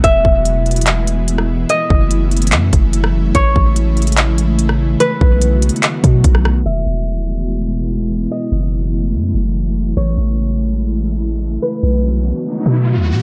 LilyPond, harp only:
\new Staff \with { instrumentName = "Harp" } { \time 4/4 \key e \major \tempo 4 = 145 e''2. r4 | dis''2. r4 | cis''2. r4 | b'1 |
e''2. r4 | dis''2. r4 | cis''2. r4 | b'1 | }